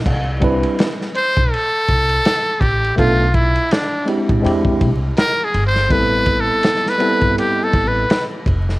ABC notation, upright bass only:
X:1
M:4/4
L:1/16
Q:"Swing 16ths" 1/4=82
K:C
V:1 name="Upright bass" clef=bass
C,,4 z3 B,,, z2 C,,2 z2 A,,,2 | B,,,4 z3 A,,, E,,2 ^B,,,2 z2 G,,,2 | A,,,4 z3 G,,, z2 A,,,2 z2 F,,,2 |]